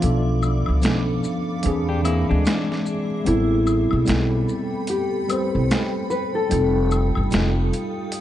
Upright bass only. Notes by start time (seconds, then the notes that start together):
0.03 B1
0.68 C#2
0.84 B1
1.66 E2
2.31 D2
3.27 A1
3.93 B1
4.08 B1
5.55 C2
6.52 F1
7.17 G1
7.33 F1